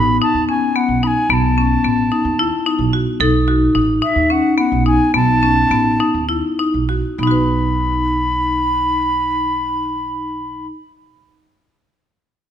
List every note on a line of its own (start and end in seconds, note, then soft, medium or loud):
0.00 0.18 A1 medium
0.00 3.32 B3 medium
0.00 0.18 D#4 medium
0.00 0.20 B5 medium
0.22 0.45 D#4 medium
0.22 0.47 A5 medium
0.34 0.58 D#2 medium
0.49 0.72 C#4 medium
0.49 0.78 G#5 medium
0.76 0.99 B3 medium
0.76 1.05 F#5 medium
0.88 1.13 B1 medium
1.03 1.27 D#4 medium
1.03 1.08 B5 medium
1.07 1.31 G#5 medium
1.29 1.77 B1 medium
1.29 1.54 B3 medium
1.29 2.93 A5 medium
1.29 1.34 B5 medium
1.58 1.81 C#4 medium
1.84 2.08 A1 medium
1.84 2.08 B3 medium
2.12 2.35 D#4 medium
2.25 2.49 D#2 medium
2.39 2.63 E4 medium
2.66 2.90 D#4 medium
2.78 3.03 B1 medium
2.93 3.17 F#4 medium
3.20 3.68 B1 medium
3.20 6.85 D#4 medium
3.20 3.44 A4 medium
3.48 3.71 F#4 medium
3.75 3.99 A1 medium
3.75 3.99 D#4 medium
4.02 4.26 D#4 medium
4.02 4.33 E5 medium
4.16 4.40 D#2 medium
4.30 4.54 C#4 medium
4.30 4.58 F#5 medium
4.58 4.82 B3 medium
4.58 4.84 F#5 medium
4.72 4.96 B1 medium
4.86 5.10 D#4 medium
4.86 5.13 G#5 medium
5.14 5.64 B1 medium
5.14 5.38 B3 medium
5.14 6.26 A5 medium
5.43 5.67 C#4 medium
5.70 5.96 A1 medium
5.70 5.96 B3 medium
6.00 6.25 D#4 medium
6.14 6.40 D#2 medium
6.29 6.54 E4 medium
6.59 6.85 D#4 medium
6.74 7.00 B1 medium
6.89 7.15 F#4 medium
7.18 10.66 B1 medium
7.18 10.66 B3 medium
7.18 10.66 D#4 medium
7.18 10.67 B5 medium
7.23 10.70 D#4 medium
7.27 10.75 F#4 medium
7.27 10.79 B4 medium